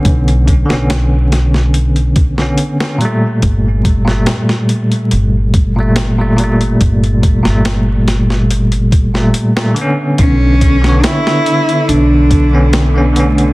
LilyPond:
<<
  \new Staff \with { instrumentName = "Cello" } { \time 4/4 \key b \minor \tempo 4 = 71 r1 | r1 | r1 | cis'4 e'4 d'4 b8 a8 | }
  \new Staff \with { instrumentName = "Tine electric piano" } { \time 4/4 \key b \minor <d b cis'>8. <d b cis'>2 <d b cis'>8 <d b cis'>16 <ais, g a>8~ | <ais, g a>8. <bes, g a>2 <bes, g a>8 <bes, g a>16 <bes, g a>8~ | <bes, g a>8. <bes, g a>2 <bes, g a>8 <bes, g a>16 <d b cis'>8~ | <d b cis'>8. <d b cis''>2 <d b cis'>8 <d b cis'>16 <d b cis'>8 | }
  \new Staff \with { instrumentName = "String section" } { \clef bass \time 4/4 \key b \minor r1 | r1 | r1 | d1 | }
  \new Staff \with { instrumentName = "Upright bass" } { \clef bass \time 4/4 \key b \minor b,,8. b,,2~ b,,16 r4 | g,,4 r4 g,,2 | g,,8. g,,2~ g,,16 r4 | b,,4 r4 b,,2 | }
  \new DrumStaff \with { instrumentName = "Drums" } \drummode { \time 4/4 <hh bd>16 hh16 <hh bd>16 sn16 <hh sn>8 <hh sn>16 sn16 hh16 hh16 <hh bd>16 sn16 hh16 sn16 hh8 | <hh bd>8 <hh bd>16 sn16 <hh sn>16 sn16 hh16 hh16 hh8 <hh bd>8 <hh sn>8 hh16 hh16 | <hh bd>16 hh16 <hh bd>16 sn16 <hh sn>8 <hh sn>16 sn16 hh16 hh16 <hh bd>16 sn16 hh16 sn16 hh8 | <hh bd>8 <hh bd>16 sn16 <hh sn>16 sn16 hh16 hh16 hh8 <hh bd>8 <hh sn>8 hh16 hh16 | }
>>